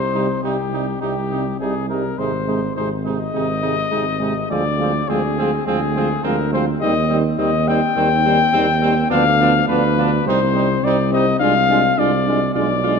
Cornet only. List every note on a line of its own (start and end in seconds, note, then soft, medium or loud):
0.00 0.41 C5 medium
0.43 1.01 G4 medium
1.02 1.59 G4 medium
1.60 1.89 G#4 medium
1.89 2.20 A#4 medium
2.19 2.76 C5 medium
2.76 2.89 C5 medium
3.05 4.47 D#5 loud
4.50 5.10 D5 medium
5.09 5.66 G#4 medium
5.66 6.26 G#4 medium
6.24 6.52 A#4 medium
6.53 6.66 C5 medium
6.81 7.18 D#5 loud
7.38 7.70 D#5 medium
7.68 9.11 G5 loud
9.11 9.68 F5 loud
9.68 10.25 B4 loud
10.27 10.86 C5 loud
10.84 11.12 D5 medium
11.13 11.39 D#5 loud
11.40 12.00 F5 loud
11.99 12.54 D5 medium
12.55 13.00 D5 loud